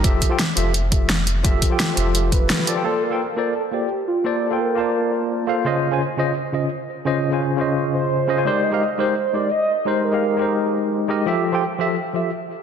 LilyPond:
<<
  \new Staff \with { instrumentName = "Soft synth lead" } { \time 4/4 \key f \major \tempo 4 = 171 r1 | r2 r8 ces''4. | a'8 bes'4 bes'8 a'8 g'4 f'8 | a'4 bes'2~ bes'8 r8 |
r1 | r2 r8 c''4. | d''8 ees''4 c''4 d''8 ees''4 | c''8 bes'2. r8 |
r1 | }
  \new Staff \with { instrumentName = "Tine electric piano" } { \time 4/4 \key f \major <f f' g' a' e''>8. <f f' g' a' g''>16 r8 <f f' g' a' e''>8 r8 <f f' g' a' e''>8 r4 | <f f' g' a' e''>8. <f f' g' a' g''>8. <f f' g' a' e''>2 <f f' g' a' d''>16 <f f' g' a' g''>16 | <bes f' a' c'' d''>8. <bes f' a' c'' g''>16 r8 <bes f' a' c'' d''>8 r8 <bes f' a' c'' d''>8 r4 | <bes f' a' c'' d''>8. <bes f' a' c'' g''>8. <bes f' c'' d'' a''>2 <bes f' a' c'' f''>8 |
<des des' f' c'' ees''>8. <des des' f' c'' aes''>16 r8 <des des' f' c'' ees''>8 r8 <des des' f' c'' ees''>8 r4 | <des des' f' c'' ees''>8. <des des' f' c'' aes''>8. <des des' f' c'' ees''>2 <des des' f' c'' ees''>16 <des des' f' c'' aes''>16 | <aes ees' g' bes' c''>8. <aes ees' g' bes' f''>16 r8 <aes ees' g' bes' c''>8 r8 <aes ees' g' bes' c''>8 r4 | <aes ees' g' bes' c''>8. <aes ees' g' bes' f''>8. <aes ees' g' bes' c''>2 <aes ees' g' bes' ees''>8 |
<f f' g' a' e''>8. <f f' g' a' g''>16 r8 <f f' g' a' e''>8 r8 <f f' g' a' e''>8 r4 | }
  \new Staff \with { instrumentName = "Sub bass" } { \clef bass \time 4/4 \key f \major f,,8 r4 f,,2~ f,,8 | f,,8 r4 f,,4. r4 | r1 | r1 |
r1 | r1 | r1 | r1 |
r1 | }
  \new DrumStaff \with { instrumentName = "Drums" } \drummode { \time 4/4 <hh bd>8 <hh bd>8 <hh sn>8 hh8 hh8 <hh bd>8 <hh sn>8 hh8 | <hh bd>8 <hh bd>8 <hh sn>8 hh8 hh8 <hh bd>8 <hh sn>16 sn16 hh8 | r4 r4 r4 r4 | r4 r4 r4 r4 |
r4 r4 r4 r4 | r4 r4 r4 r4 | r4 r4 r4 r4 | r4 r4 r4 r4 |
r4 r4 r4 r4 | }
>>